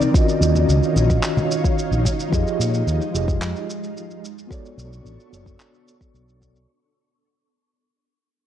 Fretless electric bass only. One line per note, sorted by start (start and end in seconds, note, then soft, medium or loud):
0.41 0.64 D#2 medium
0.69 0.80 C#2 medium
0.96 1.19 A#1 medium
1.91 2.03 A#1 medium
2.32 2.44 F2 medium
2.59 2.82 A#2 medium
2.87 2.98 D#2 medium
3.14 3.37 F1 medium
3.41 3.53 F2 medium
4.78 5.00 B1 medium
5.05 5.16 A1 medium
5.33 5.55 F#1 medium
6.14 6.65 B1 medium